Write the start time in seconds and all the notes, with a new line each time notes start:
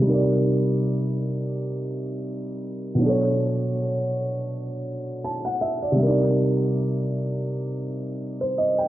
0.00 C3 G3
0.06 D#4 A#4
0.13 D5
2.95 B2
2.99 F#3 D4
3.06 A4 C#5
5.24 A5
5.45 F#5
5.61 E5
5.82 D5
5.92 C3 G3
5.99 D4 A#4
6.06 D#4 D5
8.41 C5
8.58 D#5
8.79 G5